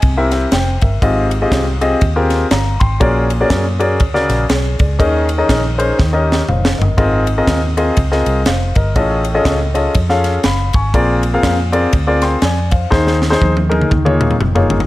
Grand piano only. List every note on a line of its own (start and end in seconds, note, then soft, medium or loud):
0.00 0.78 C3 medium
0.00 0.30 D#5 medium
0.00 0.30 G#5 medium
0.17 0.46 C4 medium
0.17 0.46 E4 medium
0.17 0.46 G4 medium
0.17 0.31 A#4 medium
0.17 0.31 E5 medium
0.32 0.51 A#4 medium
0.32 0.51 E5 medium
0.53 0.81 C5 medium
0.53 0.81 G5 medium
0.82 1.29 A#4 medium
0.82 1.29 E5 medium
1.02 1.77 G#2 medium
1.02 1.29 C4 medium
1.02 1.29 F4 medium
1.02 1.29 G4 medium
1.02 1.29 G#4 medium
1.02 1.29 D#5 loud
1.42 1.64 C4 medium
1.42 1.64 F4 medium
1.42 1.64 G4 medium
1.42 1.64 G#4 medium
1.42 1.64 D#5 medium
1.81 2.00 C4 medium
1.81 1.99 F4 medium
1.81 2.00 G4 medium
1.81 1.99 G#4 medium
1.81 2.00 D#5 loud
2.16 2.45 C4 medium
2.16 2.45 F4 medium
2.16 2.45 G4 medium
2.16 2.45 G#4 medium
2.16 2.45 A#4 medium
2.51 2.79 F5 medium
2.51 2.79 A#5 medium
2.80 3.28 G5 medium
2.80 3.27 C6 medium
3.00 3.76 A#2 medium
3.00 3.27 C#4 loud
3.00 3.27 F#4 medium
3.00 3.27 G#4 medium
3.00 3.27 A#4 medium
3.00 3.27 D5 medium
3.41 3.63 C#4 medium
3.41 3.63 F#4 medium
3.41 3.62 G#4 medium
3.41 3.63 A#4 medium
3.41 3.63 D5 medium
3.79 3.98 C#4 medium
3.79 3.98 F#4 medium
3.79 3.98 G#4 medium
3.79 3.98 A#4 medium
3.79 3.98 D5 medium
4.14 4.43 C#3 medium
4.14 4.44 F#4 medium
4.14 4.44 G#4 medium
4.14 4.44 A#4 medium
4.14 4.44 D5 loud
4.49 4.78 G#4 medium
4.49 4.77 C#5 medium
4.79 4.98 G#4 medium
4.79 5.26 D5 medium
4.99 5.74 D#3 medium
4.99 5.26 C#4 medium
4.99 5.26 D#4 medium
4.99 5.26 G#4 medium
4.99 5.26 A#4 medium
4.99 5.26 D#5 medium
5.38 5.61 C#4 medium
5.38 5.61 D#4 medium
5.38 5.61 G#4 medium
5.38 5.61 A#4 medium
5.38 5.61 D#5 loud
5.78 5.97 C#4 medium
5.78 5.97 D#4 medium
5.78 5.97 G#4 medium
5.78 5.97 A#4 medium
5.78 5.97 C5 loud
5.98 6.74 D#3 medium
6.13 6.42 C#4 medium
6.13 6.42 D#4 medium
6.13 6.42 G4 medium
6.13 6.42 A#4 medium
6.13 6.42 D#5 medium
6.48 6.77 C5 medium
6.48 6.76 F5 medium
6.78 6.96 A#4 medium
6.78 6.96 D#5 medium
6.97 7.73 G#2 medium
6.97 7.25 C4 loud
6.97 7.24 F4 medium
6.97 7.25 G#4 medium
6.97 7.25 A#4 medium
6.97 7.25 D#5 loud
7.38 7.60 C4 medium
7.38 7.60 F4 medium
7.38 7.60 G#4 medium
7.38 7.60 A#4 medium
7.38 7.60 D#5 loud
7.77 7.95 C4 medium
7.77 7.95 F4 medium
7.77 7.95 G#4 medium
7.77 7.95 A#4 medium
7.77 7.95 D#5 medium
8.12 8.41 C4 medium
8.12 8.41 F4 medium
8.12 8.41 G#4 medium
8.12 8.41 A#4 medium
8.12 8.41 D#5 medium
8.47 8.75 C5 medium
8.47 8.75 F5 medium
8.76 9.23 A#4 medium
8.76 8.94 D#5 medium
8.96 9.71 A2 medium
8.96 9.23 C#4 medium
8.96 9.23 F4 medium
8.96 9.23 G#4 medium
8.96 9.23 A4 medium
8.96 9.23 D#5 loud
9.35 9.57 C#4 medium
9.35 9.57 F4 medium
9.35 9.57 G#4 medium
9.35 9.57 A4 medium
9.35 9.57 D#5 loud
9.74 9.93 C#4 medium
9.74 9.93 F4 medium
9.74 9.93 G#4 medium
9.74 9.93 A4 medium
9.74 9.93 D#5 loud
10.09 10.39 C#4 medium
10.09 10.39 F4 medium
10.09 10.39 G#4 medium
10.09 10.39 A4 medium
10.09 10.39 F5 loud
10.44 10.73 F5 medium
10.44 10.72 B5 medium
10.74 11.22 G#5 medium
10.74 11.21 C#6 medium
10.94 11.69 A#2 medium
10.94 11.21 C4 medium
10.94 11.21 F4 medium
10.94 11.21 G#4 medium
10.94 11.21 A#4 medium
10.94 11.21 D5 loud
11.34 11.56 C4 medium
11.34 11.56 F4 medium
11.34 11.56 G#4 medium
11.34 11.56 A#4 medium
11.34 11.56 F5 loud
11.72 11.91 C4 medium
11.72 11.91 F4 medium
11.72 11.91 G#4 medium
11.72 11.91 A#4 medium
11.72 11.91 D5 loud
12.07 12.37 C4 medium
12.07 12.36 F4 medium
12.07 12.36 G#4 medium
12.07 12.37 A#4 medium
12.07 12.22 D5 medium
12.22 12.42 G5 medium
12.22 12.41 C6 medium
12.42 12.70 D5 medium
12.42 12.70 G#5 medium
12.71 12.90 C5 medium
12.71 13.19 F5 medium
12.90 13.66 D#3 medium
12.90 13.18 D#4 medium
12.90 13.18 G#4 medium
12.90 13.18 C5 loud
13.30 13.53 D#4 medium
13.30 13.53 G#4 medium
13.30 13.53 C5 loud
13.69 13.88 D#4 medium
13.69 13.89 G#4 medium
13.69 13.88 A#4 medium
13.90 14.65 D#3 medium
14.05 14.34 A#3 medium
14.05 14.35 D#4 medium
14.05 14.34 F4 medium
14.05 14.34 G#4 medium
14.05 14.34 C#5 loud
14.55 14.78 A#3 medium
14.55 14.78 D#4 medium
14.55 14.78 F4 medium
14.55 14.78 G#4 medium
14.55 14.78 C#5 medium